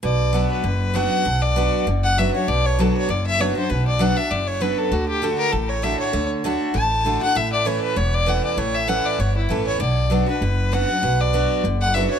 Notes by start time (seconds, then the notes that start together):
0.03 B1 B2 D5
0.33 F#3 B3 D4 F#4
0.51 B4
0.64 F#1 F#2
0.94 F#3 B3 D4 F#4 F#5
1.25 B1 B2
1.42 D5
1.56 F#3 B3 D4 F#4
1.87 F#1 F#2
2.04 F#5
2.18 F#3 B3 D4 F#4 E5
2.34 D4 F#4 C#5
2.48 B1 B2 D5
2.65 C#5
2.79 F#3 B3 D4 F#4 A4
2.97 C#5
3.09 F#1 F#2 D5
3.27 E5
3.38 F#3 B3 D4 F#4 C#5
3.55 D4 F#4 C5
3.69 B1 B2 B4
3.87 D5
3.99 F#3 B3 D4 F#4 F#5
4.16 D4 F#4 E5
4.30 F#1 F#2 D5
4.47 C#5
4.60 F#3 B3 D4 F#4 B4
4.78 A4
4.91 D2 D3 F#4
5.08 G4
5.22 D3 A3 D4 F#4 A4
5.38 A#4
5.52 A1 A2 A4
5.69 C#5
5.82 D3 A3 D4 F#4 E5
5.99 C#5
6.13 D2 D3
6.44 D3 A3 D4 F#4
6.74 A1 A2 A5
7.05 D3 A3 D4 F#4
7.21 D4 F#4 F#5
7.35 A1 A2 E5
7.52 D5
7.65 E3 A3 C#4 E4 C#5
7.83 B4
7.96 E1 E2 C#5
8.14 D5
8.26 E3 A3 C#4 E4 F#5
8.45 D5
8.57 A1 A2 C#5
8.74 E5
8.88 E3 A3 C#4 E4 F#5
9.05 D5
9.19 G1 E2 C#5
9.37 E4
9.49 A1 E3 A3 C#4 E4 A4
9.67 C#5
9.80 B1 B2 D5
10.10 F#3 B3 D4 F#4
10.26 D4 F#4 B4
10.41 F#1 F#2
10.72 F#3 B3 D4 F#4 F#5
10.88 D4 F#4
11.03 B1 B2
11.20 D5
11.33 F#3 B3 D4 F#4
11.64 F#1 F#2
11.81 F#5
11.94 F#3 B3 D4 F#4 E5
12.10 C#5